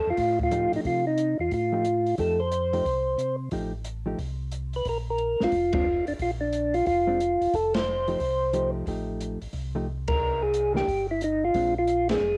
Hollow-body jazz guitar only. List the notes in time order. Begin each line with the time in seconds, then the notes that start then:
0.51 F3 A3 D#4 G4
1.73 F3 A3 D#4 G4
2.18 F3 A3 D#4 G4
2.73 F3 A3 D#4 G4
3.52 F3 A3 D#4 G4
4.06 F3 A3 D#4 G4
5.40 G#3 C4 D4
5.73 G#3 C4 D4
7.07 G#3 C4 D4
8.08 F3 A3 D#4 G4
8.53 F3 A3 D#4 G4
8.87 F3 A3 D#4 G4
9.75 F3 A3 D#4 G4
10.74 E3 A#3 D4
11.55 G#3 C4 D4
12.09 G#3 C4 D4